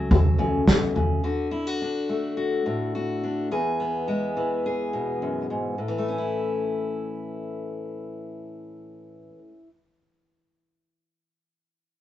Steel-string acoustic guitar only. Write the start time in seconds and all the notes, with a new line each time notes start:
Already playing: F#3 A3 C#4 G#4
0.11 A4
0.38 C#3
0.68 B2
0.95 C#3
1.24 D3 F#4
1.51 E4
1.67 F#4
1.82 D4
2.09 A3
2.37 F#4
2.66 A2
2.95 F#4
3.24 D4
3.51 E2 G#4
3.80 B3
4.08 G#3
4.37 E3
4.66 G#4
4.93 B2
5.22 F#2
5.50 G#2
5.78 A2
5.88 E3
5.98 A3
6.08 C#4
6.18 E4